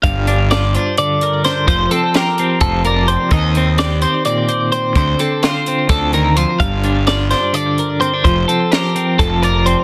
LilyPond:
<<
  \new Staff \with { instrumentName = "Clean electric guitar" } { \time 7/8 \key g \minor \tempo 4 = 128 f''4 d''8 c''8 d''4 c''8 | c''8 a'8 bes'4 a'8 bes'8 c''8 | ees''4 d''8 c''8 d''4 c''8 | c''8 a'8 c''4 a'8 bes'8 c''8 |
f''4 d''8 c''8 d''4 c''8 | c''8 a'8 bes'4 a'8 bes'8 c''8 | }
  \new Staff \with { instrumentName = "Clean electric guitar" } { \time 7/8 \key g \minor << { r8 d'8 f'8 d'4 bes'8 d'8 | r8 c'8 g'8 c'4 d''8 c'8~ | c'8 c'8 g'8 c'4 c''8 c'8~ | c'8 c'8 f'8 c'2 |
r8 d'8 f'8 d'4 bes'8 c'16 d'16 | r8 c'8 g'8 c'4 d''8 c'8 | } \\ { g,2 d4. | f2 f4. | ees2 bes,4. | d2 r8 ees8 f8 |
g,2 d4. | f2 f4. | } >> }
  \new Staff \with { instrumentName = "Fingered electric bass" } { \clef bass \time 7/8 \key g \minor g,,2 r4. | f,,8 r4. f,,4. | ees,2 r4. | d,8 r4. d,4. |
g,,2 r4. | f,,8 r4. f,,4. | }
  \new DrumStaff \with { instrumentName = "Drums" } \drummode { \time 7/8 <hh bd>8 hh8 <hh sn>8 hh8 hh8 hh8 <hh sn>8 | <hh bd>8 hh8 <hh sn>8 hh8 <hh bd>8 hh8 hh8 | <hh bd>8 hh8 <hh sn>8 hh8 hh8 hh8 hh8 | <hh bd>8 hh8 <hh sn>8 hh8 <hh bd sn>8 hh8 hh8 |
<hh bd>8 hh8 <hh sn>8 <hh sn>8 hh8 hh8 hh8 | <hh bd>8 hh8 <hh sn>8 hh8 <hh bd>8 hh8 hh8 | }
>>